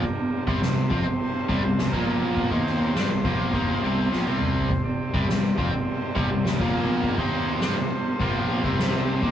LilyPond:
<<
  \new Staff \with { instrumentName = "Transistor combo organ" } { \time 4/4 \key c \dorian \tempo 4 = 103 << { bes'8. c''2~ c''8 bes'8.~ | bes'16 c''2.~ c''8.~ | c''16 d''2. bes'8.~ | bes'16 c''2.~ c''8. | } \\ { <d' g'>8. <c' g'>2~ <c' g'>8 <bes f'>8.~ | <bes f'>16 <c' g'>2.~ <c' g'>8.~ | <c' g'>2.~ <c' g'>16 <bes f'>8.~ | <bes f'>16 <c' g'>2.~ <c' g'>8. | } >> }
  \new Staff \with { instrumentName = "Overdriven electric guitar" } { \clef bass \time 4/4 \key c \dorian r8. <c g>16 <c g>8 <f c'>16 r8. <c g>16 <c g>16 <c g>16 <bes, f bes>8.~ | <bes, f bes>16 <ees bes ees'>8. <g d'>16 <c g>16 <bes, f bes>8 <ees bes ees'>8 <c g c'>8 <bes, f>16 <c g c'>8. | r8. <c g>16 <c g>8 <f c'>16 r8. <c g>16 <c g>16 <c g>16 <bes, f bes>8.~ | <bes, f bes>16 <ees bes ees'>8. <g d'>16 <c g>16 r8 <bes, f bes>8. <c g c'>4 <ees bes>16 | }
  \new Staff \with { instrumentName = "Picked electric bass" } { \clef bass \time 4/4 \key c \dorian r8. c,16 c,8 f,16 r8. c,16 c,16 c,16 bes,,8.~ | bes,,16 ees,8. g,16 c,16 bes,,8 ees,8 c,8 bes,,16 c,8. | r8. c,16 c,8 f,16 r8. c,16 c,16 c,16 bes,,8.~ | bes,,16 ees,8. g,16 c,16 r8 bes,,8. c,4 ees,16 | }
  \new DrumStaff \with { instrumentName = "Drums" } \drummode { \time 4/4 <bd cymr>8 cymr16 bd16 <cymr sn>8 <bd cymr>8 cymr8 <bd cymr>8 <cymr sn>16 bd16 cymr8 | <bd cymr>16 bd16 <cymr sn>8 <cymr sn>8 <bd cymr>8 <bd cymr>8 cymr8 sn16 tommh16 toml16 tomfh16 | <bd cymr>8 cymr16 bd16 <cymr sn>8 <bd cymr>8 cymr8 <bd cymr>8 <cymr sn>16 bd16 cymr8 | <bd cymr>16 bd16 cymr8 <cymr sn>8 cymr8 <bd cymr>8 cymr16 bd16 <cymr sn>8 cymr16 bd16 | }
>>